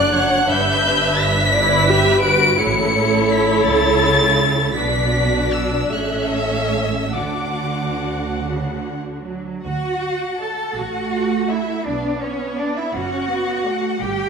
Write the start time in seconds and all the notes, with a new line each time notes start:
Already playing: F#1 F#2 D4 D5 F#6
0.14 C#5 F#5
0.48 G1 G2 B4 E5 G6
1.19 B6
1.53 E4 B4 D5
1.88 G4 E5
2.24 F#4 B4 D7
2.59 A1 A2 E4 A4 C#5 C#7
3.31 B6
3.65 C#2 C#3 A6
4.75 B1 B2 D4 F#4 D5 B6
5.52 E6
5.92 A1 A2 C#4 A4 E5 F#6
6.33 E6
7.14 D2 D3 D4 F#4 F#5 D6
8.40 C#3
8.82 D3
9.24 F#3
9.64 D2 F#4 F#5
10.38 A4 D5 A5
10.75 A1 A3 F#4 F#5
11.48 E4 D5 E5
11.86 B1 B3 D4 D5
12.21 C#4 C#5
12.58 D4 D5
12.76 E4 E5
12.94 F#1 C#4 F#4 F#5
13.31 B3
13.66 A3 D5
14.00 G1 G3 G4 G5